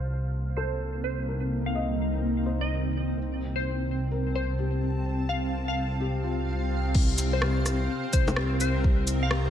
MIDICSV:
0, 0, Header, 1, 6, 480
1, 0, Start_track
1, 0, Tempo, 472441
1, 1301, Time_signature, 4, 2, 24, 8
1, 9652, End_track
2, 0, Start_track
2, 0, Title_t, "Ambient pad"
2, 0, Program_c, 0, 92
2, 0, Note_on_c, 0, 58, 76
2, 0, Note_on_c, 0, 60, 75
2, 0, Note_on_c, 0, 72, 77
2, 0, Note_on_c, 0, 77, 74
2, 300, Note_on_c, 0, 63, 85
2, 930, Note_off_c, 0, 77, 0
2, 3219, Note_off_c, 0, 63, 0
2, 3220, Note_off_c, 0, 58, 0
2, 3221, Note_off_c, 0, 72, 0
2, 3350, Note_on_c, 0, 81, 77
2, 3838, Note_on_c, 0, 72, 82
2, 4233, Note_on_c, 0, 77, 92
2, 7066, Note_off_c, 0, 81, 0
2, 7337, Note_on_c, 0, 70, 96
2, 7985, Note_off_c, 0, 77, 0
2, 8031, Note_on_c, 0, 75, 96
2, 9652, Note_off_c, 0, 60, 0
2, 9652, Note_off_c, 0, 70, 0
2, 9652, Note_off_c, 0, 72, 0
2, 9652, Note_off_c, 0, 75, 0
2, 9652, End_track
3, 0, Start_track
3, 0, Title_t, "Synth pluck"
3, 0, Program_c, 1, 84
3, 575, Note_on_c, 1, 72, 85
3, 833, Note_off_c, 1, 72, 0
3, 1056, Note_on_c, 1, 72, 81
3, 1539, Note_off_c, 1, 72, 0
3, 1689, Note_on_c, 1, 77, 83
3, 1939, Note_off_c, 1, 77, 0
3, 2653, Note_on_c, 1, 75, 87
3, 3282, Note_off_c, 1, 75, 0
3, 3614, Note_on_c, 1, 72, 85
3, 3862, Note_off_c, 1, 72, 0
3, 4424, Note_on_c, 1, 72, 83
3, 4678, Note_off_c, 1, 72, 0
3, 5375, Note_on_c, 1, 77, 87
3, 5633, Note_off_c, 1, 77, 0
3, 5772, Note_on_c, 1, 77, 91
3, 6102, Note_off_c, 1, 77, 0
3, 7449, Note_on_c, 1, 72, 91
3, 7700, Note_off_c, 1, 72, 0
3, 8261, Note_on_c, 1, 72, 90
3, 8516, Note_off_c, 1, 72, 0
3, 8747, Note_on_c, 1, 72, 90
3, 9224, Note_off_c, 1, 72, 0
3, 9374, Note_on_c, 1, 77, 88
3, 9622, Note_off_c, 1, 77, 0
3, 9652, End_track
4, 0, Start_track
4, 0, Title_t, "Felt piano"
4, 0, Program_c, 2, 0
4, 0, Control_c, 2, 64, 127
4, 581, Note_on_c, 2, 69, 74
4, 1306, Note_on_c, 2, 70, 47
4, 1731, Note_off_c, 2, 69, 0
4, 1781, Note_on_c, 2, 75, 71
4, 2453, Note_off_c, 2, 70, 0
4, 2501, Note_on_c, 2, 72, 60
4, 2931, Note_off_c, 2, 75, 0
4, 3236, Control_c, 2, 64, 0
4, 3421, Note_off_c, 2, 72, 0
4, 3441, Control_c, 2, 64, 127
4, 4180, Note_on_c, 2, 70, 62
4, 4661, Note_on_c, 2, 67, 61
4, 5330, Note_off_c, 2, 70, 0
4, 5811, Note_off_c, 2, 67, 0
4, 6100, Note_on_c, 2, 67, 74
4, 6337, Note_on_c, 2, 65, 56
4, 7076, Control_c, 2, 64, 0
4, 7251, Note_off_c, 2, 67, 0
4, 7258, Control_c, 2, 64, 127
4, 7259, Note_off_c, 2, 65, 0
4, 7539, Note_on_c, 2, 67, 62
4, 8490, Note_off_c, 2, 67, 0
4, 8505, Note_on_c, 2, 67, 55
4, 9445, Note_off_c, 2, 67, 0
4, 9460, Note_on_c, 2, 67, 77
4, 9652, Note_off_c, 2, 67, 0
4, 9652, End_track
5, 0, Start_track
5, 0, Title_t, "Detuned saw bass"
5, 0, Program_c, 3, 39
5, 0, Note_on_c, 3, 36, 86
5, 3204, Note_off_c, 3, 36, 0
5, 3218, Note_on_c, 3, 36, 87
5, 7042, Note_off_c, 3, 36, 0
5, 7060, Note_on_c, 3, 36, 100
5, 8010, Note_off_c, 3, 36, 0
5, 8262, Note_on_c, 3, 36, 90
5, 9652, Note_off_c, 3, 36, 0
5, 9652, End_track
6, 0, Start_track
6, 0, Title_t, "Drums"
6, 7056, Note_on_c, 9, 49, 99
6, 7061, Note_on_c, 9, 36, 113
6, 7158, Note_off_c, 9, 49, 0
6, 7163, Note_off_c, 9, 36, 0
6, 7296, Note_on_c, 9, 69, 75
6, 7296, Note_on_c, 9, 82, 56
6, 7398, Note_off_c, 9, 69, 0
6, 7398, Note_off_c, 9, 82, 0
6, 7536, Note_on_c, 9, 37, 105
6, 7637, Note_off_c, 9, 37, 0
6, 7780, Note_on_c, 9, 37, 61
6, 7780, Note_on_c, 9, 69, 62
6, 7780, Note_on_c, 9, 82, 59
6, 7882, Note_off_c, 9, 37, 0
6, 7882, Note_off_c, 9, 69, 0
6, 7882, Note_off_c, 9, 82, 0
6, 8260, Note_on_c, 9, 69, 74
6, 8260, Note_on_c, 9, 82, 58
6, 8263, Note_on_c, 9, 36, 101
6, 8362, Note_off_c, 9, 69, 0
6, 8362, Note_off_c, 9, 82, 0
6, 8365, Note_off_c, 9, 36, 0
6, 8409, Note_on_c, 9, 61, 67
6, 8409, Note_on_c, 9, 82, 32
6, 8498, Note_on_c, 9, 37, 104
6, 8510, Note_off_c, 9, 61, 0
6, 8510, Note_off_c, 9, 82, 0
6, 8600, Note_off_c, 9, 37, 0
6, 8741, Note_on_c, 9, 69, 61
6, 8741, Note_on_c, 9, 82, 54
6, 8843, Note_off_c, 9, 69, 0
6, 8843, Note_off_c, 9, 82, 0
6, 8984, Note_on_c, 9, 36, 124
6, 9086, Note_off_c, 9, 36, 0
6, 9218, Note_on_c, 9, 69, 73
6, 9218, Note_on_c, 9, 82, 57
6, 9319, Note_off_c, 9, 69, 0
6, 9319, Note_off_c, 9, 82, 0
6, 9456, Note_on_c, 9, 37, 106
6, 9558, Note_off_c, 9, 37, 0
6, 9652, End_track
0, 0, End_of_file